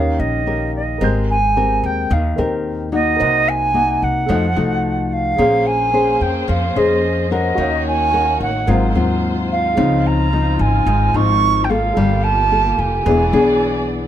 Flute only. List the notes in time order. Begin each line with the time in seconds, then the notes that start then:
Already playing: F5
0.19 D#5
0.76 D#5
1.30 G#5
1.86 G5
2.13 F5
2.94 D#5
3.49 G#5
4.03 F#5
5.13 F5
5.66 G#5
6.22 G5
6.50 F5
6.78 D#5
7.33 D#5
7.87 G#5
8.42 F#5
8.69 F5
9.52 F5
10.07 A#5
10.60 G#5
11.16 C#6
11.64 G5
11.70 F5
12.23 A5
12.79 G#5